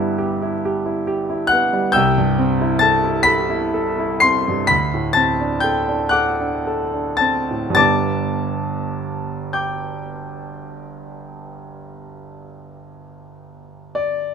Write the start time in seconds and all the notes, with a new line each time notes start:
Already playing: G2 G3 B3 E4 G4 E5 B5 E6
0.18 G4
0.42 E4
0.65 G4
0.86 E4
1.07 G4
1.30 E4
1.47 F#5 F#6
1.52 B3
1.73 G3
1.92 C2 G5 E6 G6
2.18 G2
2.39 C4
2.61 E4
2.79 A4 A5 A6
3.04 E4
3.23 A4 B5 B6
3.50 E4
3.74 A4
3.99 E4
4.20 C4 C6 C7
4.48 G2
4.67 D2 B5 B6
4.94 A2
5.13 C4 A5 A6
5.41 D4
5.60 A4 G5 G6
5.89 D4
6.09 A4 F#5 D6 F#6
6.40 D4
6.67 A4
6.93 D4
7.17 C4 A5 A6
7.51 A2
7.70 G2
7.75 G1 B3 D4 G4 A5 D6 A6
9.53 G5 D6 G6
13.95 D5